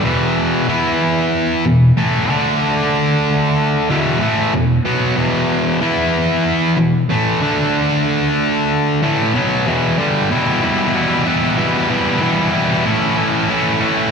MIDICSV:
0, 0, Header, 1, 2, 480
1, 0, Start_track
1, 0, Tempo, 639659
1, 35, Time_signature, 4, 2, 24, 8
1, 10589, End_track
2, 0, Start_track
2, 0, Title_t, "Distorted electric guitar"
2, 0, Program_c, 0, 30
2, 31, Note_on_c, 0, 40, 82
2, 31, Note_on_c, 0, 47, 88
2, 34, Note_on_c, 0, 52, 107
2, 506, Note_off_c, 0, 52, 0
2, 507, Note_off_c, 0, 40, 0
2, 507, Note_off_c, 0, 47, 0
2, 515, Note_on_c, 0, 52, 79
2, 517, Note_on_c, 0, 59, 78
2, 521, Note_on_c, 0, 64, 90
2, 1231, Note_off_c, 0, 52, 0
2, 1232, Note_off_c, 0, 59, 0
2, 1234, Note_off_c, 0, 64, 0
2, 1242, Note_on_c, 0, 40, 44
2, 1246, Note_on_c, 0, 47, 62
2, 1433, Note_off_c, 0, 40, 0
2, 1435, Note_off_c, 0, 47, 0
2, 1480, Note_on_c, 0, 45, 79
2, 1483, Note_on_c, 0, 52, 82
2, 1484, Note_on_c, 0, 57, 87
2, 1723, Note_off_c, 0, 45, 0
2, 1723, Note_off_c, 0, 52, 0
2, 1723, Note_off_c, 0, 57, 0
2, 1723, Note_on_c, 0, 50, 81
2, 1723, Note_on_c, 0, 57, 82
2, 1726, Note_on_c, 0, 62, 96
2, 2917, Note_off_c, 0, 57, 0
2, 2918, Note_off_c, 0, 50, 0
2, 2919, Note_off_c, 0, 62, 0
2, 2923, Note_on_c, 0, 40, 83
2, 2927, Note_on_c, 0, 47, 74
2, 2928, Note_on_c, 0, 52, 84
2, 3152, Note_off_c, 0, 47, 0
2, 3152, Note_off_c, 0, 52, 0
2, 3155, Note_on_c, 0, 45, 64
2, 3156, Note_off_c, 0, 40, 0
2, 3161, Note_on_c, 0, 52, 73
2, 3163, Note_on_c, 0, 57, 69
2, 3393, Note_off_c, 0, 45, 0
2, 3395, Note_off_c, 0, 52, 0
2, 3397, Note_off_c, 0, 57, 0
2, 3401, Note_on_c, 0, 40, 52
2, 3405, Note_on_c, 0, 47, 59
2, 3595, Note_off_c, 0, 40, 0
2, 3597, Note_off_c, 0, 47, 0
2, 3641, Note_on_c, 0, 47, 72
2, 3645, Note_on_c, 0, 54, 77
2, 3647, Note_on_c, 0, 59, 77
2, 3869, Note_off_c, 0, 47, 0
2, 3872, Note_on_c, 0, 40, 85
2, 3878, Note_off_c, 0, 54, 0
2, 3878, Note_on_c, 0, 47, 82
2, 3879, Note_off_c, 0, 59, 0
2, 3881, Note_on_c, 0, 52, 84
2, 4351, Note_off_c, 0, 52, 0
2, 4353, Note_off_c, 0, 40, 0
2, 4355, Note_off_c, 0, 47, 0
2, 4360, Note_on_c, 0, 52, 85
2, 4363, Note_on_c, 0, 59, 89
2, 4366, Note_on_c, 0, 64, 91
2, 5078, Note_off_c, 0, 52, 0
2, 5079, Note_off_c, 0, 59, 0
2, 5080, Note_off_c, 0, 64, 0
2, 5087, Note_on_c, 0, 40, 44
2, 5088, Note_on_c, 0, 47, 51
2, 5280, Note_off_c, 0, 40, 0
2, 5280, Note_off_c, 0, 47, 0
2, 5327, Note_on_c, 0, 45, 84
2, 5331, Note_on_c, 0, 52, 92
2, 5334, Note_on_c, 0, 57, 94
2, 5561, Note_off_c, 0, 45, 0
2, 5563, Note_off_c, 0, 52, 0
2, 5564, Note_off_c, 0, 57, 0
2, 5571, Note_on_c, 0, 50, 73
2, 5572, Note_on_c, 0, 57, 73
2, 5574, Note_on_c, 0, 62, 83
2, 6763, Note_off_c, 0, 50, 0
2, 6764, Note_off_c, 0, 57, 0
2, 6765, Note_off_c, 0, 62, 0
2, 6774, Note_on_c, 0, 45, 75
2, 6776, Note_on_c, 0, 52, 75
2, 6777, Note_on_c, 0, 57, 77
2, 7004, Note_off_c, 0, 45, 0
2, 7005, Note_off_c, 0, 52, 0
2, 7006, Note_off_c, 0, 57, 0
2, 7013, Note_on_c, 0, 47, 68
2, 7014, Note_on_c, 0, 54, 68
2, 7016, Note_on_c, 0, 59, 72
2, 7243, Note_off_c, 0, 47, 0
2, 7244, Note_off_c, 0, 54, 0
2, 7245, Note_off_c, 0, 59, 0
2, 7254, Note_on_c, 0, 40, 70
2, 7255, Note_on_c, 0, 47, 79
2, 7260, Note_on_c, 0, 52, 77
2, 7484, Note_off_c, 0, 40, 0
2, 7484, Note_off_c, 0, 47, 0
2, 7486, Note_off_c, 0, 52, 0
2, 7491, Note_on_c, 0, 43, 76
2, 7492, Note_on_c, 0, 50, 84
2, 7494, Note_on_c, 0, 55, 85
2, 7722, Note_off_c, 0, 43, 0
2, 7722, Note_off_c, 0, 50, 0
2, 7723, Note_off_c, 0, 55, 0
2, 7730, Note_on_c, 0, 40, 94
2, 7734, Note_on_c, 0, 47, 95
2, 7736, Note_on_c, 0, 52, 84
2, 7736, Note_on_c, 0, 55, 104
2, 7738, Note_on_c, 0, 59, 107
2, 7742, Note_on_c, 0, 64, 103
2, 7961, Note_off_c, 0, 40, 0
2, 7964, Note_off_c, 0, 47, 0
2, 7969, Note_off_c, 0, 55, 0
2, 7970, Note_on_c, 0, 40, 86
2, 7972, Note_off_c, 0, 52, 0
2, 7973, Note_on_c, 0, 47, 84
2, 7975, Note_on_c, 0, 52, 91
2, 7978, Note_on_c, 0, 55, 85
2, 7979, Note_off_c, 0, 59, 0
2, 7981, Note_off_c, 0, 64, 0
2, 7982, Note_on_c, 0, 59, 93
2, 7984, Note_on_c, 0, 64, 97
2, 8199, Note_off_c, 0, 40, 0
2, 8204, Note_off_c, 0, 47, 0
2, 8208, Note_off_c, 0, 55, 0
2, 8208, Note_on_c, 0, 40, 101
2, 8210, Note_off_c, 0, 52, 0
2, 8213, Note_on_c, 0, 47, 103
2, 8213, Note_on_c, 0, 52, 100
2, 8214, Note_off_c, 0, 59, 0
2, 8217, Note_on_c, 0, 55, 107
2, 8217, Note_on_c, 0, 59, 100
2, 8218, Note_off_c, 0, 64, 0
2, 8221, Note_on_c, 0, 64, 107
2, 8442, Note_off_c, 0, 40, 0
2, 8444, Note_off_c, 0, 47, 0
2, 8449, Note_off_c, 0, 55, 0
2, 8451, Note_on_c, 0, 40, 92
2, 8453, Note_off_c, 0, 52, 0
2, 8453, Note_on_c, 0, 47, 85
2, 8456, Note_on_c, 0, 52, 85
2, 8457, Note_off_c, 0, 59, 0
2, 8458, Note_on_c, 0, 55, 90
2, 8460, Note_off_c, 0, 64, 0
2, 8460, Note_on_c, 0, 59, 102
2, 8463, Note_on_c, 0, 64, 105
2, 8679, Note_off_c, 0, 40, 0
2, 8684, Note_off_c, 0, 47, 0
2, 8687, Note_off_c, 0, 52, 0
2, 8688, Note_on_c, 0, 40, 87
2, 8689, Note_off_c, 0, 55, 0
2, 8691, Note_off_c, 0, 64, 0
2, 8693, Note_on_c, 0, 47, 94
2, 8696, Note_off_c, 0, 59, 0
2, 8696, Note_on_c, 0, 52, 89
2, 8698, Note_on_c, 0, 55, 88
2, 8699, Note_on_c, 0, 59, 79
2, 8700, Note_on_c, 0, 64, 89
2, 8922, Note_off_c, 0, 40, 0
2, 8926, Note_off_c, 0, 47, 0
2, 8926, Note_off_c, 0, 52, 0
2, 8928, Note_off_c, 0, 55, 0
2, 8929, Note_off_c, 0, 64, 0
2, 8931, Note_on_c, 0, 40, 75
2, 8935, Note_on_c, 0, 47, 81
2, 8935, Note_on_c, 0, 52, 83
2, 8936, Note_off_c, 0, 59, 0
2, 8937, Note_on_c, 0, 55, 96
2, 8938, Note_on_c, 0, 64, 80
2, 8939, Note_on_c, 0, 59, 86
2, 9157, Note_off_c, 0, 40, 0
2, 9160, Note_off_c, 0, 47, 0
2, 9163, Note_off_c, 0, 52, 0
2, 9165, Note_off_c, 0, 55, 0
2, 9166, Note_on_c, 0, 40, 91
2, 9169, Note_off_c, 0, 64, 0
2, 9169, Note_on_c, 0, 47, 84
2, 9172, Note_on_c, 0, 52, 85
2, 9174, Note_off_c, 0, 59, 0
2, 9174, Note_on_c, 0, 55, 93
2, 9177, Note_on_c, 0, 59, 88
2, 9178, Note_on_c, 0, 64, 92
2, 9396, Note_off_c, 0, 40, 0
2, 9397, Note_off_c, 0, 47, 0
2, 9401, Note_off_c, 0, 52, 0
2, 9403, Note_off_c, 0, 55, 0
2, 9405, Note_on_c, 0, 40, 78
2, 9406, Note_on_c, 0, 47, 79
2, 9409, Note_off_c, 0, 59, 0
2, 9409, Note_off_c, 0, 64, 0
2, 9410, Note_on_c, 0, 52, 90
2, 9412, Note_on_c, 0, 55, 85
2, 9412, Note_on_c, 0, 59, 71
2, 9418, Note_on_c, 0, 64, 92
2, 9627, Note_off_c, 0, 40, 0
2, 9628, Note_off_c, 0, 47, 0
2, 9630, Note_off_c, 0, 52, 0
2, 9631, Note_off_c, 0, 55, 0
2, 9634, Note_off_c, 0, 64, 0
2, 9645, Note_on_c, 0, 45, 95
2, 9646, Note_on_c, 0, 52, 106
2, 9649, Note_on_c, 0, 57, 98
2, 9650, Note_off_c, 0, 59, 0
2, 9651, Note_on_c, 0, 64, 115
2, 9653, Note_on_c, 0, 61, 107
2, 9868, Note_off_c, 0, 45, 0
2, 9872, Note_off_c, 0, 57, 0
2, 9873, Note_off_c, 0, 52, 0
2, 9875, Note_off_c, 0, 61, 0
2, 9877, Note_on_c, 0, 45, 85
2, 9879, Note_off_c, 0, 64, 0
2, 9881, Note_on_c, 0, 57, 90
2, 9882, Note_on_c, 0, 52, 96
2, 9884, Note_on_c, 0, 61, 100
2, 9888, Note_on_c, 0, 64, 90
2, 10114, Note_off_c, 0, 45, 0
2, 10119, Note_off_c, 0, 52, 0
2, 10119, Note_off_c, 0, 57, 0
2, 10122, Note_off_c, 0, 61, 0
2, 10123, Note_off_c, 0, 64, 0
2, 10123, Note_on_c, 0, 45, 89
2, 10128, Note_on_c, 0, 52, 100
2, 10128, Note_on_c, 0, 57, 94
2, 10131, Note_on_c, 0, 61, 107
2, 10132, Note_on_c, 0, 64, 99
2, 10344, Note_off_c, 0, 45, 0
2, 10344, Note_off_c, 0, 52, 0
2, 10348, Note_off_c, 0, 57, 0
2, 10350, Note_off_c, 0, 61, 0
2, 10352, Note_off_c, 0, 64, 0
2, 10353, Note_on_c, 0, 45, 87
2, 10353, Note_on_c, 0, 52, 93
2, 10357, Note_on_c, 0, 57, 96
2, 10359, Note_on_c, 0, 61, 93
2, 10361, Note_on_c, 0, 64, 107
2, 10583, Note_off_c, 0, 45, 0
2, 10585, Note_off_c, 0, 52, 0
2, 10587, Note_off_c, 0, 57, 0
2, 10589, Note_off_c, 0, 61, 0
2, 10589, Note_off_c, 0, 64, 0
2, 10589, End_track
0, 0, End_of_file